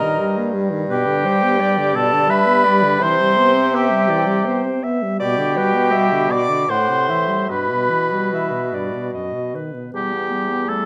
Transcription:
Already playing: G2 A#4 D#5 A#5
0.02 D#3
0.19 G3
0.37 A#3
0.54 G3
0.72 D#3
0.89 B2 G4 B4 G5
1.07 D3
1.25 G3 C5
1.43 B3
1.60 G3 D5
1.78 D3
1.94 B2 A4 A5
2.13 D3
2.29 G3 B4 E5 B5
2.47 B3
2.64 G3 D5
2.83 D3
2.99 C3 E3 C5 C6
3.20 G3
3.37 B3
3.54 C4
3.72 B3 G4 E5
3.77 G5
3.90 G3
4.09 E3 D5
4.27 G3
4.46 B3 C5
4.64 C4
4.83 B3 E5
5.02 G3
5.20 B2 G4 D5 G5
5.39 D3
5.57 G3 B4
5.74 B3
5.92 G3 E5
6.11 D3
6.29 B2 D5 D6
6.49 D3
6.68 A2 C5 F#5 C6
6.89 C3
7.09 E3 E5
7.29 G3
7.49 G2 B2 B4 B5
7.70 B2
7.90 E3
8.12 G3
8.32 E3 E5
8.51 B2
8.72 G2 D5
8.93 B2
9.13 F#2 D#5
9.34 B2
9.55 D#3 B4
9.74 B2
9.93 E2 G3 B3 G4 E5
10.12 B3 G5
10.32 G3 E5
10.50 B3 G5
10.68 G3 A3 A4 E5

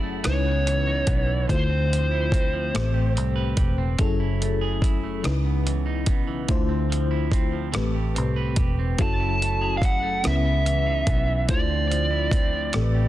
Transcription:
Already playing: F#1 F#3 C#4 E4 G#4 A4
0.03 A3
0.24 C#2 C#3 C#4 D#4 E4 B4 C#5, cross-stick, closed hi-hat
0.45 B3
0.65 E3, closed hi-hat
0.87 D#4
1.07 B1 B3, kick, closed hi-hat
1.27 E3
1.48 D2 D3 A3 E4 F4 C5, kick, closed hi-hat
1.52 C5
1.70 C4
1.89 F3, closed hi-hat
2.11 E4
2.32 C4, kick, closed hi-hat
2.53 F3
2.74 A1 A2 A3 B3 G4 C5, cross-stick, closed hi-hat
2.81 C4
2.94 G4
3.15 C2 C4, closed hi-hat
3.36 B4
3.57 E1 G4, kick, closed hi-hat
3.78 C4
3.99 F#1 F#3 C#4 E4 G#4 A4, kick, closed hi-hat
4.20 E4
4.41 A3, closed hi-hat
4.61 G#4
4.82 E4, kick, closed hi-hat
5.03 A3
5.23 C#2 C#3 C#4 D#4 E4 B4, cross-stick, closed hi-hat
5.45 B3
5.66 E3, closed hi-hat
5.86 D#4
6.06 B1 B3, kick, closed hi-hat
6.27 E3
6.48 D2 D3 A3 E4 F4 C5, kick, closed hi-hat
6.69 C4
6.90 F3, closed hi-hat
7.11 E4
7.31 C4, kick, closed hi-hat
7.52 F3
7.72 A1 A2 A3 C4 G4 B4, cross-stick, closed hi-hat
7.95 G4
8.15 C2 C4, closed hi-hat
8.36 B4
8.56 E1 G4, kick, closed hi-hat
8.79 C4
8.98 F#1 F#3 C#4 E4 F#4 A4 A5, kick, closed hi-hat
9.20 E4
9.41 A3, closed hi-hat
9.61 G#4
9.77 F5
9.82 E4 F#5, kick, closed hi-hat
10.03 A3
10.23 C#2 C#3 B3 C#4 E4 B4, cross-stick, closed hi-hat
10.27 E5
10.45 B3
10.65 E3, closed hi-hat
10.86 D#4
11.07 B1 B3, kick, closed hi-hat
11.28 E3
11.48 D2 D3 A3 E4 F4 C5 D5, kick, closed hi-hat
11.69 C4
11.90 F3, closed hi-hat
12.11 E4
12.31 C4, kick, closed hi-hat
12.53 F3
12.73 A1 A2 A3 C4 G4 A4, cross-stick, closed hi-hat
12.82 B4
12.95 G4

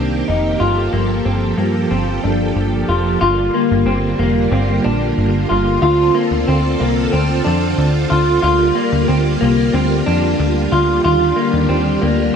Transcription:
Already playing: C2 D#3 A#3 C4 D4 G4
0.28 F1 D#4
0.60 G1 F3 F4 A4
0.93 G1 A#3
1.25 G1 C4
1.58 G2 A#3
1.91 G1 C4
2.24 G1 D4
2.56 G1
2.89 F1 F4
3.21 G1 D3 G3 A#3 F4
3.54 A#3
3.71 G1
3.86 G1 C4
4.19 F1 A#3
4.52 G1 C4
4.84 A#1 D4
5.18 G1
5.49 G1 F4
5.81 D2 C4 F4 A4
6.15 A#3
6.31 D2
6.48 D2 C4
6.80 C2 A#3
7.12 D2 C4
7.45 F2 D4
7.78 D2
8.10 D2 F4
8.41 D2 G3 A#3 F4
8.75 A#3
8.92 D2
9.08 D2 C4
9.41 C2 A#3
9.73 D2 C4
10.06 F2 D4
10.39 D2
10.72 D2 F4
11.03 D#2 D3 G3 D4 F4
11.36 A#3
11.53 D#2
11.69 D#2 C4
12.02 D2 A#3

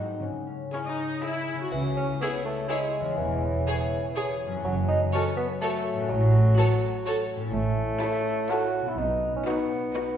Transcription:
Already playing: G#2 D#4 D#5
0.00 F#4
0.22 C#3 C#5
0.47 C#4
0.72 C#4 E4 G#4
0.85 D#4
0.97 C#5
1.22 E4 G#4 E5
1.47 G#4
1.53 C#3
1.58 C#4 F#4
1.62 E4
1.67 G#4
1.71 C#2 C#3 E3 E4 C#5, triangle
1.97 C#4
2.21 B3 E4 G#4 C#5
2.45 A3
2.69 G#3 E4 G#4 C#5
3.00 E2
3.05 C#4
3.10 G#4
3.18 E1 E2 E3
3.67 G#4 C#5
4.16 G#4 C#5
4.47 F#2
4.51 C#4
4.55 F#4
4.60 F#4 A4 C#5
4.64 F#1 F#2 F#3
4.88 D#4
5.13 C#4 F#4 A4 C#5
5.37 B3
5.61 A3 F#4 A4 C#5
5.92 A2
5.97 C#4
6.01 F#4
6.06 F#3 A4
6.10 A1 A2
6.57 F#4 A4 C#5
7.06 F#4 A4 C#5
7.36 A2
7.40 C#4
7.45 E4
7.50 A3 E4 A4 C#5
7.54 A1 A2
8.02 E4 A4 C#5
8.50 E4 F#4 A4 C#5
8.81 B2
8.86 B3 E4
8.90 D#4
8.95 B2 D#4 F#4 B4
8.99 B1
9.36 C#4
9.46 B3 D#4 F#4 B4
9.94 D#4 F#4 B4

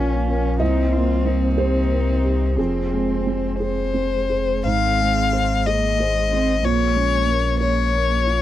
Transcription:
Already playing: A#1 A#2 F3 A#3 C#4 F4 A#4 C#5 F5 G5
0.28 C#4 A#4
0.60 C2 C4 D#4 G4 C5 D#5
0.93 A#3 F4
1.25 C4 D#4
1.57 C4 G4 C5
1.91 A#4
2.23 G4
2.57 F1 F2 G#3 C4 G#4
2.93 G#3
3.27 C4
3.59 G#4 C5
3.94 C4
4.30 G#4
4.64 G#1 G#2 G#3 C4 G#4 C5 F5
5.00 G#3
5.33 C5
5.66 A#3 G#4 D#5
5.98 G#3 C5
6.30 C4
6.62 A#1 A#2 A#3 F4 C#5
6.95 G#3 C#4
7.26 A#3 A#4
7.61 C#5
7.95 A#4
8.27 F4

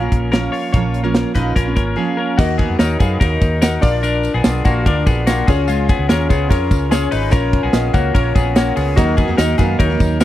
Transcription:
Already playing: C#4 A#4
0.01 A#3 C#4 F4
0.12 A#1, kick, closed hi-hat
0.32 F3 A#3 C#4 F4 A#4, snare, closed hi-hat
0.52 F4 C#5, open hi-hat
0.73 A#1 A#2 F3 A#3 C#4 F4 C#5, kick, closed hi-hat
0.94 closed hi-hat
1.04 A#2 F3 A#3 C#4 F4 A#4
1.15 snare, closed hi-hat
1.34 A#1 A#2 F3 A#3 C#4 D#4 F4 B4, kick, closed hi-hat
1.56 A#1 C#4 A#4, kick, closed hi-hat
1.65 A#3 C#4 F4
1.76 G#1 C#4 A#4, kick, closed hi-hat
1.96 F3 A#3 C#4 F4 G#4
2.17 C#4 A#4
2.38 D#2 A#3 D#4 F#4 A#4 D#5, kick, crash, tambourine
2.58 B3 G#4, kick, ride
2.70 F2
2.79 D#2 D#4 F#4 A#4 C#5, snare, ride, tambourine
3.00 F#2 B3 D#4 F#4 G#4 A#4 F5, kick, ride, tambourine
3.20 D#2 D#4 F#4 A#4 D#5, kick, ride, tambourine
3.41 D#2, kick, ride, tambourine
3.61 D#4 F#4 A#4 F#5, snare, ride, tambourine
3.81 A#1 D4 F4 A#4 D5, kick, open hi-hat, ride, tambourine
4.03 D4 A#4, hi-hat pedal, ride, tambourine
4.23 ride, tambourine
4.34 A#1 B3 G#4
4.44 B1 D4 F4 A#4 D5, snare, ride, tambourine
4.65 A#1 A#3 D4 F4 F#4 A#4 F5, kick, ride, tambourine
4.86 D2 D4 F4 A#4 D5, kick, ride
5.06 A#1 B3 G#4, kick, ride, tambourine
5.27 A#3 D4 F4 F#4 A#4 F5, snare, ride, tambourine
5.47 C#2 C#4 F4 G#4 C#5, kick, tambourine, crash
5.68 G#3 F4, hi-hat pedal, ride, tambourine
5.89 B3 G#4, kick, ride, tambourine
5.99 C#2
6.09 D#2 C#4 F4 G#4 A#4 C#5, snare, ride, tambourine
6.28 C#2 B3 C#4 F4 G#4 C#5, kick, ride, tambourine
6.49 F2 C#4 F4 G#4 A#4 C#5, kick, ride, tambourine
6.71 C#2, kick, ride, tambourine
6.90 C#4 F4 G#4 C#5, snare, ride, tambourine
7.11 G#1 D#4 B4, open hi-hat, ride, tambourine
7.30 A#1 C#4 F4 A#4 C#5, kick, hi-hat pedal, ride, tambourine
7.53 kick, ride
7.63 B1 B3 G#4
7.73 A#1 C#4 F4 A#4 D#5, snare, ride, tambourine
7.94 C#2 A#3 C#4 F4 F#4 A#4 C#5, kick, ride, tambourine
8.14 A#1 C#4 F4 A#4 C#5, kick, ride
8.35 A#1 B3 G#4, kick, ride, tambourine
8.56 A#3 C#4 F4 F#4 A#4 C#5, snare, ride, tambourine
8.76 C#2 B3 G#4, open hi-hat, ride, tambourine
8.96 D#2 D#3 F#3 A#3 D#4 F#4 A#4 D#5, kick, hi-hat pedal, ride, tambourine
9.17 B3 G#4, kick, ride, tambourine
9.28 F2 F#3 A#3 D#4
9.38 D#2 D#4 F#4 A#4 D#5, snare, ride, tambourine
9.58 F#2 D#3 F#3 A#3 B3 D#4 F#4 G#4 A#4 F5, kick, ride, tambourine
9.79 D#2 D#4 F#4 A#4 C#5, kick, ride
9.90 F#3 A#3 D#4
10.00 D#2, kick, ride, tambourine
10.20 D#3 D#4 F#4 A#4 D#5, snare, ride, tambourine

